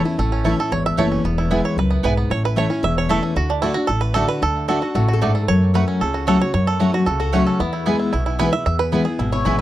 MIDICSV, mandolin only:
0, 0, Header, 1, 2, 480
1, 0, Start_track
1, 0, Tempo, 264901
1, 337, Time_signature, 4, 2, 24, 8
1, 17419, End_track
2, 0, Start_track
2, 0, Title_t, "Mandolin"
2, 0, Program_c, 0, 25
2, 804, Note_on_c, 0, 57, 82
2, 811, Note_on_c, 0, 64, 88
2, 814, Note_on_c, 0, 73, 82
2, 818, Note_on_c, 0, 81, 90
2, 972, Note_off_c, 0, 57, 0
2, 976, Note_off_c, 0, 64, 0
2, 978, Note_off_c, 0, 73, 0
2, 980, Note_off_c, 0, 81, 0
2, 1764, Note_on_c, 0, 57, 97
2, 1772, Note_on_c, 0, 64, 99
2, 1775, Note_on_c, 0, 73, 107
2, 1780, Note_on_c, 0, 81, 99
2, 1932, Note_off_c, 0, 57, 0
2, 1936, Note_off_c, 0, 64, 0
2, 1938, Note_off_c, 0, 73, 0
2, 1940, Note_off_c, 0, 81, 0
2, 2730, Note_on_c, 0, 59, 94
2, 2736, Note_on_c, 0, 64, 88
2, 2740, Note_on_c, 0, 71, 96
2, 2743, Note_on_c, 0, 80, 91
2, 2895, Note_off_c, 0, 59, 0
2, 2898, Note_off_c, 0, 64, 0
2, 2900, Note_off_c, 0, 71, 0
2, 2901, Note_off_c, 0, 80, 0
2, 3683, Note_on_c, 0, 59, 102
2, 3692, Note_on_c, 0, 64, 106
2, 3697, Note_on_c, 0, 71, 122
2, 3701, Note_on_c, 0, 80, 105
2, 3851, Note_off_c, 0, 59, 0
2, 3856, Note_off_c, 0, 64, 0
2, 3858, Note_off_c, 0, 71, 0
2, 3860, Note_off_c, 0, 80, 0
2, 4641, Note_on_c, 0, 57, 84
2, 4647, Note_on_c, 0, 64, 91
2, 4655, Note_on_c, 0, 73, 93
2, 4658, Note_on_c, 0, 81, 93
2, 4811, Note_off_c, 0, 57, 0
2, 4814, Note_off_c, 0, 64, 0
2, 4818, Note_off_c, 0, 73, 0
2, 4819, Note_off_c, 0, 81, 0
2, 5599, Note_on_c, 0, 57, 97
2, 5605, Note_on_c, 0, 64, 109
2, 5610, Note_on_c, 0, 73, 97
2, 5616, Note_on_c, 0, 81, 101
2, 5770, Note_off_c, 0, 57, 0
2, 5773, Note_off_c, 0, 64, 0
2, 5776, Note_off_c, 0, 73, 0
2, 5778, Note_off_c, 0, 81, 0
2, 6559, Note_on_c, 0, 57, 82
2, 6568, Note_on_c, 0, 66, 84
2, 6572, Note_on_c, 0, 74, 80
2, 6574, Note_on_c, 0, 81, 99
2, 6730, Note_off_c, 0, 57, 0
2, 6735, Note_off_c, 0, 66, 0
2, 6737, Note_off_c, 0, 74, 0
2, 6738, Note_off_c, 0, 81, 0
2, 7521, Note_on_c, 0, 57, 102
2, 7528, Note_on_c, 0, 66, 102
2, 7531, Note_on_c, 0, 74, 107
2, 7536, Note_on_c, 0, 81, 122
2, 7692, Note_off_c, 0, 57, 0
2, 7695, Note_off_c, 0, 66, 0
2, 7697, Note_off_c, 0, 74, 0
2, 7700, Note_off_c, 0, 81, 0
2, 8479, Note_on_c, 0, 57, 75
2, 8487, Note_on_c, 0, 66, 102
2, 8491, Note_on_c, 0, 74, 87
2, 8496, Note_on_c, 0, 81, 95
2, 8652, Note_off_c, 0, 57, 0
2, 8656, Note_off_c, 0, 66, 0
2, 8658, Note_off_c, 0, 74, 0
2, 8660, Note_off_c, 0, 81, 0
2, 9448, Note_on_c, 0, 57, 109
2, 9457, Note_on_c, 0, 66, 106
2, 9461, Note_on_c, 0, 74, 111
2, 9466, Note_on_c, 0, 81, 99
2, 9616, Note_off_c, 0, 57, 0
2, 9621, Note_off_c, 0, 66, 0
2, 9623, Note_off_c, 0, 74, 0
2, 9625, Note_off_c, 0, 81, 0
2, 10401, Note_on_c, 0, 57, 89
2, 10408, Note_on_c, 0, 66, 92
2, 10412, Note_on_c, 0, 73, 91
2, 10416, Note_on_c, 0, 78, 100
2, 10573, Note_off_c, 0, 57, 0
2, 10577, Note_off_c, 0, 66, 0
2, 10579, Note_off_c, 0, 73, 0
2, 10581, Note_off_c, 0, 78, 0
2, 11358, Note_on_c, 0, 57, 96
2, 11364, Note_on_c, 0, 66, 101
2, 11370, Note_on_c, 0, 73, 105
2, 11374, Note_on_c, 0, 78, 109
2, 11532, Note_off_c, 0, 57, 0
2, 11535, Note_off_c, 0, 66, 0
2, 11538, Note_off_c, 0, 73, 0
2, 11540, Note_off_c, 0, 78, 0
2, 12313, Note_on_c, 0, 57, 84
2, 12319, Note_on_c, 0, 66, 86
2, 12325, Note_on_c, 0, 73, 95
2, 12327, Note_on_c, 0, 78, 92
2, 12489, Note_off_c, 0, 57, 0
2, 12492, Note_off_c, 0, 66, 0
2, 12495, Note_off_c, 0, 73, 0
2, 12496, Note_off_c, 0, 78, 0
2, 13275, Note_on_c, 0, 57, 104
2, 13278, Note_on_c, 0, 66, 90
2, 13284, Note_on_c, 0, 73, 106
2, 13289, Note_on_c, 0, 78, 103
2, 13450, Note_off_c, 0, 57, 0
2, 13452, Note_off_c, 0, 66, 0
2, 13454, Note_off_c, 0, 73, 0
2, 13457, Note_off_c, 0, 78, 0
2, 14237, Note_on_c, 0, 59, 81
2, 14242, Note_on_c, 0, 64, 91
2, 14247, Note_on_c, 0, 71, 91
2, 14251, Note_on_c, 0, 80, 93
2, 14411, Note_off_c, 0, 59, 0
2, 14413, Note_off_c, 0, 64, 0
2, 14416, Note_off_c, 0, 71, 0
2, 14418, Note_off_c, 0, 80, 0
2, 15198, Note_on_c, 0, 59, 105
2, 15207, Note_on_c, 0, 64, 107
2, 15210, Note_on_c, 0, 71, 108
2, 15216, Note_on_c, 0, 80, 103
2, 15371, Note_off_c, 0, 59, 0
2, 15375, Note_off_c, 0, 64, 0
2, 15377, Note_off_c, 0, 71, 0
2, 15380, Note_off_c, 0, 80, 0
2, 16161, Note_on_c, 0, 59, 79
2, 16169, Note_on_c, 0, 64, 82
2, 16174, Note_on_c, 0, 71, 101
2, 16180, Note_on_c, 0, 80, 85
2, 16332, Note_off_c, 0, 59, 0
2, 16336, Note_off_c, 0, 64, 0
2, 16339, Note_off_c, 0, 71, 0
2, 16342, Note_off_c, 0, 80, 0
2, 17129, Note_on_c, 0, 59, 92
2, 17136, Note_on_c, 0, 64, 99
2, 17142, Note_on_c, 0, 71, 114
2, 17145, Note_on_c, 0, 80, 109
2, 17296, Note_off_c, 0, 59, 0
2, 17299, Note_off_c, 0, 64, 0
2, 17302, Note_off_c, 0, 71, 0
2, 17304, Note_off_c, 0, 80, 0
2, 17419, End_track
0, 0, End_of_file